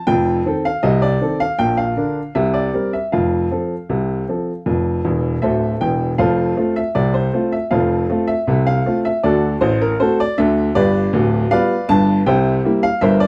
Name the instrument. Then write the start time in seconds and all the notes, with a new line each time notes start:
grand piano
0.07 F1 F2 G5
0.46 D#3 C4 A4
0.65 F5
0.83 C2 C3 D#5
1.02 D5
1.21 D#3 C4 A4
1.40 F5
1.59 A#1 A#2 G5
1.77 F5
1.97 D3 D4 A#4
2.35 C2 C3 E5
2.54 D5
2.74 G3 C4 A#4
2.93 E5
3.12 F1 F2 F5
3.51 F3 C4 A4
3.89 C2 C3
4.29 F3 C4 A4
4.66 F1 F2
5.05 E1 E2
5.42 D1 D2 A4 C5 E5
5.81 E1 E2 G5
6.18 F1 F2 A4 C5 F5
6.57 A3 C4 F4
6.76 E5
6.95 C2 C3 D5
7.14 C5
7.33 A3 C4 F4
7.52 E5
7.71 F1 F2 A4 C5 F5
8.10 A3 C4 F4
8.28 E5
8.47 C2 C3
8.67 F5
8.86 A3 C4 F4
9.05 E5
9.24 D2 D3 F#4 A4 D5
9.61 A1 A2 C5
9.82 A#4
10.00 A3 C4 F#4 A4 C5
10.20 D5
10.38 D2 D3 E5
10.75 G1 G2 G4 B4 D5
11.13 D1 D2
11.51 G3 B3 F4 B4 D5 F5
11.89 G1 G2 A5
12.26 C2 C3 C5 E5 G5
12.65 G3 A#3 E4
12.83 F5
13.01 G1 G2 A#4 C5 E5
13.20 D5